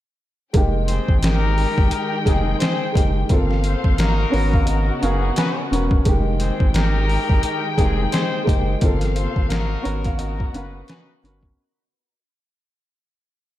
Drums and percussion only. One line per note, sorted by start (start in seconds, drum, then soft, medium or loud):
0.54 kick loud
0.54 closed hi-hat medium
0.88 closed hi-hat medium
1.08 kick medium
1.23 snare loud
1.23 closed hi-hat medium
1.58 open hi-hat medium
1.78 kick medium
1.91 closed hi-hat loud
2.26 kick medium
2.26 snare soft
2.26 closed hi-hat medium
2.60 snare loud
2.60 closed hi-hat loud
2.95 kick loud
2.95 closed hi-hat medium
3.29 kick loud
3.29 closed hi-hat medium
3.51 snare soft
3.64 closed hi-hat medium
3.84 kick medium
3.98 snare loud
3.98 closed hi-hat medium
4.34 open hi-hat medium
4.54 kick medium
4.67 closed hi-hat loud
5.03 closed hi-hat medium
5.36 snare loud
5.36 closed hi-hat loud
5.73 closed hi-hat medium
5.91 kick medium
6.05 kick loud
6.05 closed hi-hat medium
6.40 closed hi-hat medium
6.60 kick medium
6.74 snare loud
6.74 closed hi-hat medium
7.09 open hi-hat medium
7.29 kick medium
7.43 closed hi-hat loud
7.78 kick loud
7.78 snare soft
7.78 closed hi-hat medium
8.12 snare loud
8.12 closed hi-hat loud
8.47 kick loud
8.47 closed hi-hat medium
8.81 kick loud
8.81 closed hi-hat medium
9.01 snare soft
9.01 closed hi-hat medium
9.16 closed hi-hat medium
9.36 kick medium
9.50 snare loud
9.50 closed hi-hat medium
9.85 closed hi-hat medium
10.04 kick medium
10.04 closed hi-hat medium
10.19 closed hi-hat loud
10.40 kick loud
10.54 closed hi-hat medium
10.88 snare loud
10.88 closed hi-hat loud
11.25 closed hi-hat medium
11.43 kick medium